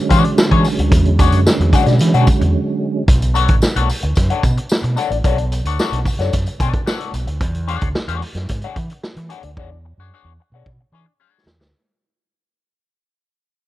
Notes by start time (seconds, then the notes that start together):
Already playing: D3 F#3 G#3 C#4
0.09 E3 D4 G#4 C#5 F#5, kick, closed hi-hat, tambourine
0.24 muted clean electric guitar stroke, closed hi-hat
0.38 muted clean electric guitar stroke, snare, tambourine
0.51 E3 D4 G#4 C#5 G#5, kick, closed hi-hat
0.64 muted clean electric guitar stroke, open hi-hat, tambourine
0.79 D2, muted clean electric guitar stroke, closed hi-hat
0.92 E2, kick, closed hi-hat, tambourine
1.05 closed hi-hat
1.19 D4 G#4 C#5 F#5, kick, closed hi-hat, tambourine
1.32 F#2, closed hi-hat, tambourine
1.46 muted clean electric guitar stroke, snare, tambourine
1.59 E2, muted clean electric guitar stroke, closed hi-hat
1.73 D4 G#4 C#5 F#5, kick, closed hi-hat, tambourine
1.86 B2, muted clean electric guitar stroke, snare, closed hi-hat, tambourine
1.99 E3, muted clean electric guitar stroke, snare, closed hi-hat, tambourine
2.14 B2 D4 G#4 C#5 F#5, closed hi-hat, tambourine
2.27 muted clean electric guitar stroke, kick, closed hi-hat, tambourine
2.41 E2, muted clean electric guitar stroke, closed hi-hat
3.08 B1, kick, closed hi-hat, tambourine
3.22 closed hi-hat, tambourine
3.34 D4 A4 C#5 F#5, closed hi-hat, tambourine
3.48 A1, kick, closed hi-hat
3.62 muted clean electric guitar stroke, snare, tambourine
3.76 B1 D4 A4 C#5 F#5, closed hi-hat
3.90 muted clean electric guitar stroke, open hi-hat, tambourine
4.02 D2, muted clean electric guitar stroke, closed hi-hat
4.15 F#2, muted clean electric guitar stroke, kick, snare, closed hi-hat, tambourine
4.30 D4 A4 C#5 F#5, closed hi-hat
4.43 B2, muted clean electric guitar stroke, kick, closed hi-hat, tambourine
4.57 muted clean electric guitar stroke, closed hi-hat
4.69 snare, tambourine
4.83 B2, muted clean electric guitar stroke, closed hi-hat
4.96 D4 A4 C#5 F#5, closed hi-hat, tambourine
5.11 A1, muted clean electric guitar stroke, closed hi-hat
5.24 B1 D4 A4 C#5 F#5, kick, closed hi-hat, tambourine
5.38 muted clean electric guitar stroke, closed hi-hat
5.52 muted clean electric guitar stroke, closed hi-hat, tambourine
5.65 D2 D4 A4 C#5 F#5, closed hi-hat, tambourine
5.79 D4 A4 C#5 F#5, snare, tambourine
5.92 B1, closed hi-hat
6.05 muted clean electric guitar stroke, kick, open hi-hat, tambourine
6.19 F#2 D4 A4 C#5 F#5, snare, closed hi-hat, tambourine
6.33 F#2, kick, snare, closed hi-hat, tambourine
6.46 muted clean electric guitar stroke, closed hi-hat, tambourine
6.60 B2 D4 A4 C#5 G#5, kick, closed hi-hat, tambourine
6.73 muted clean electric guitar stroke, kick, closed hi-hat
6.86 D4 A4 C#5 F#5, snare, tambourine
7.00 closed hi-hat
7.13 B1, muted clean electric guitar stroke, closed hi-hat, tambourine
7.27 D2, muted clean electric guitar stroke, closed hi-hat
7.41 E2, kick, closed hi-hat
7.55 closed hi-hat
7.68 D4 G#4 C#5 F#5, closed hi-hat
7.81 D2, kick, closed hi-hat
7.95 muted clean electric guitar stroke, snare
8.08 E2 D4 G#4 C#5 F#5, closed hi-hat
8.22 muted clean electric guitar stroke, open hi-hat
8.35 F#2, muted clean electric guitar stroke, snare, closed hi-hat
8.49 G#2, muted clean electric guitar stroke, kick, snare, closed hi-hat
8.62 G#4 C#5 F#5, closed hi-hat
8.66 D4
8.76 E3, muted clean electric guitar stroke, kick, closed hi-hat
8.90 muted clean electric guitar stroke, closed hi-hat
9.03 snare
9.16 E3, muted clean electric guitar stroke, closed hi-hat
9.29 D4 G#4 C#5 F#5, closed hi-hat
9.43 D2, muted clean electric guitar stroke, closed hi-hat
9.57 E2 D4 G#4 C#5 F#5, kick
9.71 muted clean electric guitar stroke
9.85 muted clean electric guitar stroke
9.98 F#2 D4 G#4 C#5 F#5
10.14 D4 G#4 C#5 F#5
10.24 E2
10.40 muted clean electric guitar stroke
10.52 B2 D4 G#4 C#5 F#5
10.66 B2, kick
10.81 muted clean electric guitar stroke
10.92 E3 D4 G#4 C#5 G#5
11.06 muted clean electric guitar stroke
11.20 D4 G#4 C#5 F#5
11.46 E2, muted clean electric guitar stroke, snare
11.59 D2, muted clean electric guitar stroke, snare